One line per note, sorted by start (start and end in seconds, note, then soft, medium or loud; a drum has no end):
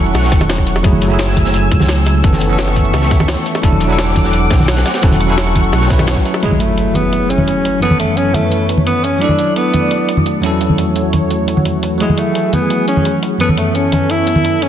0.00 0.13 E1 medium
0.00 0.83 F#3 medium
0.00 6.38 A3 medium
0.00 0.86 C#4 medium
0.00 0.85 E4 medium
0.00 0.87 A4 medium
0.00 0.82 F#5 medium
0.00 0.83 C#6 medium
0.06 shaker medium
0.14 0.34 B1 medium
0.14 snare soft
0.14 closed hi-hat medium
0.14 open hi-hat medium
0.14 shaker soft
0.23 snare soft
0.23 shaker soft
0.32 0.83 E1 medium
0.32 kick loud
0.32 snare soft
0.32 closed hi-hat medium
0.32 shaker soft
0.40 snare soft
0.40 high conga medium
0.49 snare loud
0.49 closed hi-hat medium
0.49 shaker soft
0.58 kick medium
0.67 closed hi-hat medium
0.76 snare soft
0.83 1.00 F#1 loud
0.83 1.07 F#3 medium
0.83 1.08 A3 medium
0.83 1.09 E4 medium
0.83 1.09 G#4 medium
0.83 2.22 G#5 medium
0.83 2.22 E6 medium
0.83 kick loud
0.83 closed hi-hat medium
0.83 shaker soft
0.93 high conga medium
1.02 1.53 F#1 medium
1.02 closed hi-hat medium
1.08 2.20 F#3 medium
1.08 2.21 A3 medium
1.08 2.22 E4 medium
1.08 shaker medium
1.13 2.23 G#4 medium
1.19 snare loud
1.19 closed hi-hat medium
1.19 shaker soft
1.28 snare soft
1.37 kick medium
1.37 closed hi-hat medium
1.37 high conga medium
1.45 snare medium
1.45 shaker medium
1.54 1.70 F#1 medium
1.54 closed hi-hat medium
1.54 shaker soft
1.71 2.23 C#2 medium
1.71 kick loud
1.71 closed hi-hat medium
1.80 snare medium
1.80 high conga medium
1.88 snare loud
1.88 closed hi-hat medium
1.88 shaker soft
2.06 snare soft
2.06 closed hi-hat medium
2.22 2.40 F#1 loud
2.22 2.46 E3 medium
2.22 2.48 B3 medium
2.22 2.48 C#4 medium
2.22 2.49 A4 medium
2.22 3.62 E5 medium
2.22 3.62 C#6 medium
2.22 kick loud
2.22 closed hi-hat medium
2.22 shaker soft
2.33 snare medium
2.33 high conga medium
2.40 2.92 F#1 medium
2.40 closed hi-hat medium
2.47 3.60 E3 medium
2.47 3.61 B3 medium
2.47 3.62 C#4 medium
2.47 shaker medium
2.53 3.63 A4 medium
2.58 snare loud
2.58 closed hi-hat medium
2.58 shaker soft
2.68 snare soft
2.76 kick medium
2.76 closed hi-hat medium
2.76 high conga medium
2.85 shaker medium
2.93 3.27 C#2 medium
2.93 snare soft
2.93 closed hi-hat medium
2.93 open hi-hat medium
2.93 shaker soft
3.02 snare soft
3.11 kick loud
3.11 snare soft
3.11 closed hi-hat medium
3.20 snare soft
3.20 high conga medium
3.28 3.36 C#2 medium
3.28 snare loud
3.28 closed hi-hat medium
3.28 shaker medium
3.46 closed hi-hat medium
3.55 snare soft
3.62 3.79 E1 loud
3.62 3.86 F#3 medium
3.62 3.87 D4 medium
3.62 3.88 E4 medium
3.62 3.88 A4 medium
3.62 6.40 F#5 medium
3.62 4.84 D6 medium
3.62 kick loud
3.62 closed hi-hat medium
3.62 closed hi-hat loud
3.62 shaker medium
3.72 high conga medium
3.80 4.32 E1 medium
3.80 closed hi-hat medium
3.87 4.83 F#3 medium
3.87 4.84 D4 medium
3.87 4.85 E4 medium
3.87 shaker medium
3.92 4.86 A4 medium
3.99 snare loud
3.99 closed hi-hat medium
3.99 shaker soft
4.07 snare soft
4.16 kick medium
4.16 closed hi-hat medium
4.16 high conga medium
4.24 snare medium
4.24 shaker medium
4.33 4.49 E1 medium
4.33 closed hi-hat medium
4.33 shaker soft
4.51 4.84 B1 medium
4.51 kick loud
4.51 snare medium
4.51 closed hi-hat medium
4.60 snare soft
4.60 high conga medium
4.68 snare loud
4.68 closed hi-hat medium
4.68 shaker medium
4.76 snare loud
4.76 closed hi-hat medium
4.85 6.41 C#6 medium
4.85 snare medium
4.85 snare soft
4.85 closed hi-hat medium
4.94 snare loud
4.94 closed hi-hat medium
5.02 5.19 E1 loud
5.02 5.25 F#3 medium
5.02 5.27 C#4 medium
5.02 5.27 E4 medium
5.02 5.28 A4 medium
5.02 kick loud
5.02 snare loud
5.02 closed hi-hat medium
5.02 shaker soft
5.11 closed hi-hat medium
5.11 high conga medium
5.20 5.71 E1 medium
5.20 closed hi-hat medium
5.20 shaker soft
5.27 5.86 F#3 medium
5.27 5.88 C#4 medium
5.27 5.89 E4 medium
5.27 closed hi-hat medium
5.27 shaker medium
5.32 5.90 A4 medium
5.38 snare loud
5.38 closed hi-hat medium
5.38 shaker soft
5.47 snare soft
5.55 kick medium
5.55 closed hi-hat loud
5.55 closed hi-hat medium
5.55 high conga medium
5.64 shaker medium
5.72 6.06 B1 medium
5.72 snare soft
5.72 closed hi-hat medium
5.72 open hi-hat medium
5.72 shaker soft
5.81 snare soft
5.81 shaker soft
5.88 6.39 F#3 medium
5.88 6.40 C#4 medium
5.88 6.41 E4 medium
5.88 kick loud
5.88 snare loud
5.88 closed hi-hat medium
5.88 shaker soft
5.93 6.42 B4 medium
5.99 snare soft
5.99 high conga medium
6.07 6.16 B1 medium
6.07 snare loud
6.07 closed hi-hat medium
6.07 shaker soft
6.16 kick medium
6.16 snare soft
6.25 closed hi-hat medium
6.34 snare soft
6.34 shaker soft
6.40 7.79 F#3 medium
6.40 6.61 G#3 medium
6.40 7.80 A3 medium
6.40 13.36 A3 medium
6.40 7.81 E4 medium
6.40 7.81 F#4 medium
6.40 7.81 G#4 medium
6.40 7.81 E5 medium
6.40 closed hi-hat medium
6.40 impact medium
6.46 7.82 G#4 medium
6.51 high conga medium
6.60 6.96 A3 medium
6.60 closed hi-hat medium
6.78 closed hi-hat medium
6.94 7.31 B3 medium
6.94 closed hi-hat medium
6.94 high conga medium
7.13 closed hi-hat medium
7.30 7.81 C#4 medium
7.30 closed hi-hat medium
7.38 high conga medium
7.48 closed hi-hat medium
7.65 closed hi-hat medium
7.80 9.18 F#2 medium
7.80 9.20 F#2 medium
7.80 9.19 E3 medium
7.80 7.98 B3 medium
7.80 9.20 B3 medium
7.80 9.20 E4 medium
7.80 9.20 B4 medium
7.80 9.20 C#5 medium
7.80 closed hi-hat medium
7.84 9.20 C#4 medium
7.84 9.21 A4 medium
7.91 high conga medium
7.99 8.18 A3 medium
7.99 closed hi-hat medium
8.16 8.36 C#4 medium
8.16 closed hi-hat medium
8.34 8.69 A3 medium
8.34 closed hi-hat medium
8.34 high conga medium
8.52 closed hi-hat medium
8.69 closed hi-hat medium
8.78 high conga medium
8.86 9.06 B3 medium
8.86 closed hi-hat medium
9.04 9.23 C#4 medium
9.04 closed hi-hat medium
9.19 10.40 F#3 medium
9.19 10.41 D4 medium
9.19 9.56 D4 loud
9.19 10.42 E4 medium
9.19 13.36 F#4 medium
9.19 10.42 D5 medium
9.19 closed hi-hat medium
9.24 10.43 A4 medium
9.29 high conga medium
9.39 closed hi-hat medium
9.56 10.22 B3 medium
9.56 closed hi-hat medium
9.74 closed hi-hat medium
9.74 high conga medium
9.91 closed hi-hat medium
10.09 closed hi-hat medium
10.17 high conga medium
10.26 closed hi-hat medium
10.41 11.97 E2 medium
10.41 14.69 E3 medium
10.41 11.97 F#3 medium
10.41 11.98 C#4 medium
10.41 11.99 E4 medium
10.41 11.99 C#5 medium
10.41 closed hi-hat medium
10.46 12.00 A4 medium
10.61 closed hi-hat medium
10.70 high conga medium
10.78 closed hi-hat medium
10.96 closed hi-hat medium
11.13 closed hi-hat medium
11.13 high conga medium
11.31 closed hi-hat medium
11.48 closed hi-hat medium
11.57 high conga medium
11.65 closed hi-hat medium
11.83 closed hi-hat medium
11.98 13.37 F#3 medium
11.98 12.20 G#3 medium
11.98 13.38 A3 medium
11.98 13.39 E4 medium
11.98 13.39 G#4 medium
11.98 closed hi-hat medium
12.03 13.39 G#4 medium
12.10 high conga medium
12.18 12.55 A3 medium
12.18 closed hi-hat medium
12.35 closed hi-hat medium
12.53 12.88 B3 medium
12.53 closed hi-hat medium
12.53 high conga medium
12.70 closed hi-hat medium
12.88 13.20 C#4 medium
12.88 closed hi-hat medium
12.97 high conga medium
13.05 closed hi-hat medium
13.23 closed hi-hat medium
13.38 14.69 F#2 medium
13.38 14.69 E3 medium
13.38 13.48 B3 medium
13.38 14.69 B3 medium
13.38 14.69 C#4 medium
13.38 14.69 A4 medium
13.38 closed hi-hat medium
13.42 14.69 C#4 medium
13.42 14.69 A4 medium
13.49 high conga medium
13.57 13.77 A3 medium
13.57 closed hi-hat medium
13.75 14.12 C#4 medium
13.75 closed hi-hat medium
13.92 closed hi-hat medium
13.92 high conga medium
14.10 14.64 E4 loud
14.10 closed hi-hat medium
14.27 closed hi-hat medium
14.36 high conga medium
14.45 closed hi-hat medium
14.62 14.69 C#4 medium
14.62 closed hi-hat medium